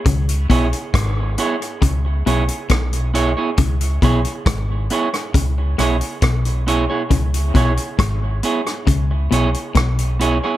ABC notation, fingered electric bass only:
X:1
M:4/4
L:1/16
Q:1/4=68
K:C#m
V:1 name="Fingered electric bass" clef=bass
C,,2 B,,, z G,,,2 z2 C,,2 B,,, z B,,,3 z | C,,2 B,,, z G,,,2 z2 C,,2 B,,, z B,,,3 z | C,,2 B,,, z G,,,2 z2 C,,2 B,,, z B,,,3 z |]